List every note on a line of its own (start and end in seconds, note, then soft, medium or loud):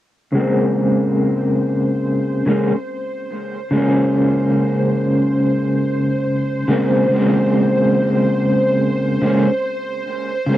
0.33 2.41 C#3 medium
0.33 2.42 G#3 medium
0.33 10.58 C5 medium
0.38 2.43 A#3 medium
0.38 2.44 C4 medium
2.46 2.70 C#3 medium
2.46 2.71 G#3 medium
2.46 2.71 A#3 medium
2.46 2.72 C#4 medium
3.71 6.63 C#3 medium
3.71 6.64 G#3 medium
3.75 6.65 A#3 medium
3.75 6.67 C#4 medium
6.68 7.06 C#3 medium
6.68 7.07 G#3 medium
6.68 7.08 A#3 medium
6.68 7.08 C4 medium
7.09 9.17 C#3 medium
7.09 9.18 G#3 medium
7.13 9.19 A#3 medium
7.13 9.20 C4 medium
9.22 9.46 C#3 medium
9.22 9.47 G#3 medium
9.22 9.47 A#3 medium
9.22 9.48 C#4 medium
10.47 10.58 C#3 medium
10.47 10.58 G#3 medium
10.51 10.58 A#3 medium
10.51 10.58 C#4 medium